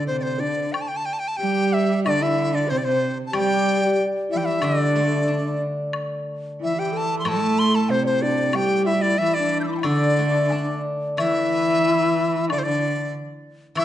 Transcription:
Already playing: guzheng D3
0.07 cello C3, xiao C5, dizi C5
0.20 dizi C5 D5
0.24 xiao C5
0.39 cello D3, xiao D4, dizi D5
0.72 dizi G5, high woodblock
0.81 dizi A5
0.88 dizi G5
0.96 dizi A5
1.05 dizi G5
1.13 dizi A5
1.19 dizi G5
1.28 dizi A5
1.37 cello G3, xiao G4, dizi G5
1.73 dizi E5
2.04 cello D3, xiao D4, dizi D5, high woodblock
2.21 xiao E4, dizi E5
2.53 xiao D4, dizi D5
2.67 cello C3, xiao C5, dizi C5
2.78 xiao C5, dizi D5
2.83 cello C3, dizi C5
3.27 dizi A5
3.32 guzheng G3, cello G3, xiao G4, dizi G5, high woodblock
3.85 xiao G4
4.29 cello E3, xiao E4, dizi E5
4.37 dizi G5
4.42 xiao E4, dizi E5
4.60 guzheng D3, xiao D4, high woodblock
4.65 cello D3, dizi D5
4.96 guzheng A3
5.28 guzheng D4
5.93 high woodblock
6.60 cello E3, xiao E4, dizi E5
6.77 xiao G4, dizi G5
6.92 xiao A4
6.97 dizi A5
7.19 dizi C6
7.25 guzheng A2, cello A3, xiao A4, dizi A5, high woodblock
7.59 dizi C6
7.75 xiao A4, dizi A5
7.89 cello C3, dizi C5, xiao C5
8.03 dizi C5, xiao C5 D5
8.22 xiao D4, dizi D5
8.53 cello G3, xiao G4, dizi G5, high woodblock
8.86 xiao E4, dizi E5
8.94 xiao G4
9.02 xiao E4, dizi D5
9.18 cello E3, xiao E4, dizi E5
9.34 xiao D4, dizi D5
9.61 dizi E6 G6
9.67 xiao E4, dizi D6
9.72 dizi A5 C6
9.77 dizi E5 G5
9.83 guzheng D3, cello D3, xiao D4, dizi D5, high woodblock
10.19 guzheng A3
10.50 guzheng D4, low woodblock
11.17 guzheng E3, cello E3, xiao E4, dizi E5, high woodblock
12.49 cello D3, xiao D4, dizi D5, high woodblock
12.59 dizi C5
12.64 cello D3, xiao D4, dizi D5
13.75 guzheng E3, cello E3, xiao E4, dizi E5, high woodblock

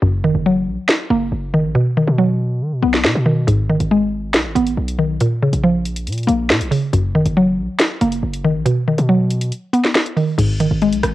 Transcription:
0.02 808-style bass F#1, synth pluck F#2
0.24 808-style bass G#1, synth pluck D#3
0.35 808-style bass F#1
0.46 synth pluck F#3
0.67 808-style bass A#1
0.89 snare
1.10 808-style bass F#1, synth pluck A#3
1.32 808-style bass F#1
1.54 synth pluck D#3
1.64 808-style bass A#1
1.75 synth pluck B2
1.97 synth pluck D#3
2.08 808-style bass B2
2.18 synth pluck F#3
2.61 808-style bass D#3
2.72 808-style bass B2
2.83 808-style bass B1, synth pluck B3
2.94 snare
3.05 808-style bass B2, snare
3.15 808-style bass B2
3.26 synth pluck D#3
3.47 808-style bass G#1, synth pluck G#2, closed hi-hat
3.69 808-style bass F#1, synth pluck D#3
3.80 808-style bass G#1, closed hi-hat
3.91 synth pluck G#3
4.34 808-style bass B1, snare, closed hi-hat
4.45 808-style bass G#1
4.55 808-style bass G#1, synth pluck B3, closed hi-hat
4.67 closed hi-hat
4.77 808-style bass B1
4.88 closed hi-hat
4.99 synth pluck D#3
5.20 synth pluck A#2, closed hi-hat
5.42 synth pluck C#3
5.53 808-style bass A#1, closed hi-hat
5.63 synth pluck F3
5.85 closed hi-hat
5.96 closed hi-hat
6.07 808-style bass A#2, closed hi-hat
6.12 closed hi-hat
6.18 closed hi-hat
6.23 closed hi-hat
6.27 808-style bass A#1, synth pluck A#3, closed hi-hat
6.50 808-style bass A#2, snare
6.61 808-style bass A#1, closed hi-hat
6.71 synth pluck C#3, open hi-hat
6.93 808-style bass F#1, synth pluck F#2, closed hi-hat
7.15 808-style bass G#1, synth pluck D#3
7.26 808-style bass F#1, closed hi-hat
7.37 synth pluck F#3
7.58 808-style bass A#1
7.79 snare, closed hi-hat
8.01 808-style bass F#1, synth pluck A#3, closed hi-hat
8.12 closed hi-hat
8.23 808-style bass F#1
8.34 closed hi-hat
8.45 synth pluck D#3
8.55 808-style bass A#1
8.66 synth pluck B2, closed hi-hat
8.88 synth pluck D#3
8.98 808-style bass B2, closed hi-hat
9.09 synth pluck F#3
9.31 closed hi-hat
9.41 closed hi-hat
9.52 closed hi-hat
9.73 synth pluck B3, closed hi-hat
9.85 snare
9.95 snare
10.06 closed hi-hat
10.17 synth pluck D#3, open hi-hat
10.38 808-style bass G#1, synth pluck G#2, closed hi-hat, crash
10.60 808-style bass F#1, synth pluck D#3, closed hi-hat
10.71 808-style bass G#1
10.82 synth pluck G#3, closed hi-hat
10.92 808-style bass B1, closed hi-hat
11.03 808-style bass G#1, cross-stick, closed hi-hat

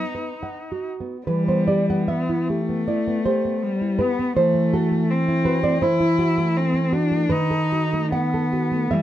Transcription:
Already playing: nylon-string guitar B3, cello D#4
0.15 nylon-string guitar B4
0.43 nylon-string guitar F#5
0.72 nylon-string guitar F#4
1.00 nylon-string guitar B3
1.27 nylon-string guitar E3 B4, cello G3
1.48 nylon-string guitar B3 C5
1.68 nylon-string guitar G4 D5
1.90 nylon-string guitar B3 F#5
2.08 cello B3, nylon-string guitar E5
2.29 nylon-string guitar E4
2.48 cello A3, nylon-string guitar G4
2.69 nylon-string guitar B3
2.88 nylon-string guitar E4 D5
3.07 nylon-string guitar B3
3.26 nylon-string guitar G4 C5
3.45 nylon-string guitar B3
3.63 cello G3
3.81 nylon-string guitar E4
3.99 cello B3, nylon-string guitar G4 B4
4.19 nylon-string guitar B3
4.37 nylon-string guitar E3 C5, cello A3
4.54 nylon-string guitar A3
4.73 nylon-string guitar F#4 A4
4.91 nylon-string guitar A3
5.10 cello C4
5.28 nylon-string guitar E4
5.45 nylon-string guitar F#4 B4
5.63 nylon-string guitar A3 D5
5.82 nylon-string guitar E3 C5, cello E4
6.00 nylon-string guitar E4
6.19 nylon-string guitar F#4
6.38 nylon-string guitar A3
6.56 cello C4
6.74 nylon-string guitar E4
6.93 cello D4, nylon-string guitar F#4
7.11 nylon-string guitar A3
7.29 nylon-string guitar D#3 B4, cello D#4
7.51 nylon-string guitar A4
7.72 nylon-string guitar F#4
7.93 nylon-string guitar A3
8.12 cello B3, nylon-string guitar F#5
8.34 nylon-string guitar A4
8.53 nylon-string guitar F#4
8.71 nylon-string guitar A3
8.91 nylon-string guitar E3 E5, cello G3

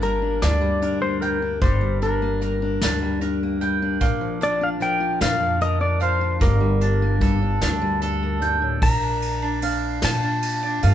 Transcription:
Already playing: upright bass G1, steel-string acoustic guitar G2 A#3 D4, mandolin G3 D4
0.01 steel-string acoustic guitar G3, mandolin A#4, pedal steel guitar A#4, closed hi-hat
0.22 steel-string acoustic guitar D4
0.41 upright bass D2, steel-string acoustic guitar G2, mandolin D4, pedal steel guitar D5, snare, closed hi-hat
0.61 steel-string acoustic guitar G3
0.82 steel-string acoustic guitar D4, mandolin A#4, closed hi-hat
1.02 steel-string acoustic guitar A#3, pedal steel guitar C5
1.21 steel-string acoustic guitar G3, pedal steel guitar A#4, mandolin G5, closed hi-hat
1.42 steel-string acoustic guitar D4
1.62 upright bass G1, steel-string acoustic guitar G2, mandolin G3, pedal steel guitar C5, kick, closed hi-hat
1.81 steel-string acoustic guitar G3
2.02 steel-string acoustic guitar D4, mandolin D4, pedal steel guitar A#4, closed hi-hat
2.22 steel-string acoustic guitar A#3
2.41 steel-string acoustic guitar G3, mandolin A#4, closed hi-hat
2.62 steel-string acoustic guitar D4
2.81 upright bass D2, steel-string acoustic guitar G2, mandolin D4, snare, closed hi-hat
3.02 steel-string acoustic guitar G3
3.21 steel-string acoustic guitar D4, mandolin A#4, closed hi-hat
3.43 steel-string acoustic guitar A#3
3.61 steel-string acoustic guitar G3, mandolin G5, closed hi-hat
3.82 steel-string acoustic guitar D4
4.01 upright bass A#1, steel-string acoustic guitar A#2, mandolin A#3, kick, closed hi-hat
4.21 steel-string acoustic guitar F3
4.41 mandolin D4, steel-string acoustic guitar F4, pedal steel guitar D5, closed hi-hat
4.61 steel-string acoustic guitar D4, pedal steel guitar F5
4.80 steel-string acoustic guitar F3, mandolin A#4, pedal steel guitar G5, closed hi-hat
5.00 steel-string acoustic guitar F4
5.21 upright bass F2, steel-string acoustic guitar A#2, mandolin D4, pedal steel guitar F5, snare, closed hi-hat
5.40 steel-string acoustic guitar F3
5.61 steel-string acoustic guitar F4, mandolin A#4, pedal steel guitar D#5, closed hi-hat
5.80 steel-string acoustic guitar D4, pedal steel guitar D5
6.00 steel-string acoustic guitar F3, pedal steel guitar C5, mandolin F5, closed hi-hat
6.21 steel-string acoustic guitar F4
6.40 upright bass G1, steel-string acoustic guitar G2, mandolin A#3, pedal steel guitar A#4, kick, closed hi-hat
6.60 steel-string acoustic guitar G3
6.81 mandolin D4, steel-string acoustic guitar D4, closed hi-hat
7.02 steel-string acoustic guitar A#3
7.21 steel-string acoustic guitar G3, mandolin A4, kick, closed hi-hat
7.42 steel-string acoustic guitar D4
7.61 upright bass D2, steel-string acoustic guitar G2, mandolin D4, snare, closed hi-hat
7.82 steel-string acoustic guitar G3
8.02 steel-string acoustic guitar D4, mandolin A4, closed hi-hat
8.23 steel-string acoustic guitar A#3
8.42 steel-string acoustic guitar G2, mandolin G5, closed hi-hat
8.62 steel-string acoustic guitar A2
8.82 upright bass A#1, steel-string acoustic guitar A#2 A#4, pedal steel guitar A#5, kick, ride
9.02 mandolin D4
9.22 ride
9.42 mandolin D4
9.62 steel-string acoustic guitar D4, mandolin F5, ride
10.02 upright bass A#2, steel-string acoustic guitar F3 F4, pedal steel guitar A5, snare, ride
10.23 mandolin D4
10.42 ride
10.63 mandolin D4
10.83 upright bass G2, steel-string acoustic guitar A#4, mandolin F5, ride

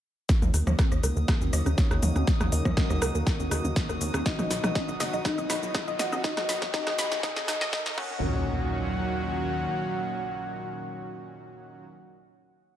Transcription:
0.29 supersaw synth C#3 F#3 A#3 D#4 F#4, synth arpeggio sound C#4, soft synth lead A#4, synth texture D#6, kick, snare, riser, cabasa
0.42 analog synth bass D#2, synth arpeggio sound A#4, mid tom, cabasa
0.54 analog synth bass D#2, synth arpeggio sound D#5, cross-stick, open hi-hat, cabasa
0.67 analog synth bass D#2, cross-stick, mid tom, cabasa
0.79 synth arpeggio sound A#4, kick, cross-stick, snare, high conga, cabasa
0.92 analog synth bass D#2, synth arpeggio sound A#4, cross-stick, cabasa
1.03 analog synth bass C#2, synth arpeggio sound A#4, soft synth lead A#4, cross-stick, open hi-hat, cabasa
1.17 analog synth bass D#2, synth arpeggio sound A#4, cabasa
1.28 synth arpeggio sound F#5, kick, cross-stick, snare, cabasa
1.41 analog synth bass D#2, high conga, cabasa
1.53 analog synth bass D#2, synth arpeggio sound D#5, cross-stick, open hi-hat, cabasa
1.66 analog synth bass D#2, synth arpeggio sound C#4, cross-stick, cabasa
1.78 soft synth lead C#5, kick, snare, cabasa
1.91 analog synth bass D#2, synth arpeggio sound A#4, cross-stick, cabasa
2.03 analog synth bass D#2, open hi-hat, mid tom, cabasa
2.16 analog synth bass D#2, cross-stick, high conga, cabasa
2.27 synth arpeggio sound C#4, kick, snare, cabasa
2.41 analog synth bass D#2, synth arpeggio sound A#4, cross-stick, mid tom, cabasa
2.52 analog synth bass D#2, soft synth lead A#4, synth arpeggio sound D#5, open hi-hat, cabasa
2.65 analog synth bass D#2, kick, cross-stick, mid tom, cabasa
2.77 synth arpeggio sound A#4, kick, cross-stick, snare, high conga, cabasa
2.90 analog synth bass D#2, synth arpeggio sound A#4, cross-stick, cabasa
3.02 analog synth bass C#2, synth arpeggio sound A#4, cross-stick, open hi-hat, cabasa
3.15 analog synth bass D#2, synth arpeggio sound A#4, cabasa
3.27 synth arpeggio sound F#5, kick, cross-stick, snare, cabasa
3.40 analog synth bass D#2, high conga, cabasa
3.51 analog synth bass D#2, synth arpeggio sound D#5, cross-stick, open hi-hat, cabasa
3.65 analog synth bass D#2, synth arpeggio sound C#4, cabasa
3.76 kick, snare, cabasa
3.89 analog synth bass D#2, synth arpeggio sound A#4, cross-stick, cabasa
4.01 analog synth bass D#2, open hi-hat, cabasa
4.14 analog synth bass D#2, cross-stick, high conga, cabasa
4.26 supersaw synth B2 D#3 D#4, synth arpeggio sound D#4, soft synth lead D#5, kick, snare, cabasa
4.39 analog synth bass B1, synth arpeggio sound D#5, cross-stick, mid tom, cabasa
4.51 analog synth bass B1, synth arpeggio sound B5, snare, open hi-hat, cabasa
4.64 analog synth bass B1, cross-stick, mid tom, cabasa
4.75 synth arpeggio sound D#5, kick, snare, high conga, cabasa
4.89 analog synth bass B1, synth arpeggio sound D#5, cabasa
5.00 analog synth bass F#1, synth arpeggio sound D#5, soft synth lead F#5, cross-stick, snare, open hi-hat, cabasa
5.13 analog synth bass B1, synth arpeggio sound D#5, cabasa
5.25 synth arpeggio sound D#4, soft synth lead D#5, kick, cross-stick, snare, cabasa
5.38 analog synth bass B1, synth arpeggio sound D#5, high conga, cabasa
5.50 analog synth bass B1, synth arpeggio sound B5, cross-stick, snare, open hi-hat, cabasa
5.63 analog synth bass B1, cabasa
5.75 synth arpeggio sound D#5, kick, cross-stick, snare, cabasa
5.88 analog synth bass B1, synth arpeggio sound D#5, cabasa
5.99 analog synth bass B1, synth arpeggio sound D#5, soft synth lead F#5, snare, open hi-hat, mid tom, cabasa
6.12 analog synth bass B1, synth arpeggio sound D#5, cross-stick, high conga, cabasa
6.24 synth arpeggio sound D#4, soft synth lead D#5, kick, snare, cabasa
6.37 analog synth bass B1, synth arpeggio sound D#5, cross-stick, snare, mid tom, cabasa
6.49 analog synth bass B1, synth arpeggio sound B5, snare, open hi-hat, cabasa
6.62 analog synth bass B1, kick, cross-stick, snare, mid tom, cabasa
6.74 synth arpeggio sound D#4, soft synth lead D#5, kick, snare, high conga, cabasa
6.87 analog synth bass B1, synth arpeggio sound D#5, cross-stick, snare, cabasa
6.99 analog synth bass F#1, synth arpeggio sound B5, snare, open hi-hat, cabasa
7.12 analog synth bass B1, snare, cabasa
7.23 synth arpeggio sound D#4, soft synth lead D#5, kick, cross-stick, snare, cabasa
7.36 analog synth bass B1, synth arpeggio sound D#5, snare, high conga, cabasa
7.48 analog synth bass B1, synth arpeggio sound D#4, soft synth lead D#5, cross-stick, snare, open hi-hat, cabasa
7.61 analog synth bass B1, synth arpeggio sound D#5, snare, cabasa
7.73 synth arpeggio sound D#4, soft synth lead D#5, kick, cross-stick, snare, cabasa
7.86 analog synth bass B1, synth arpeggio sound D#5, snare, cabasa
7.98 analog synth bass D#2, supersaw synth A#2 D#3 F#3 C#4 F#4, synth arpeggio sound C#4, soft synth lead F#5, kick, cross-stick, crash, impact
8.11 high conga

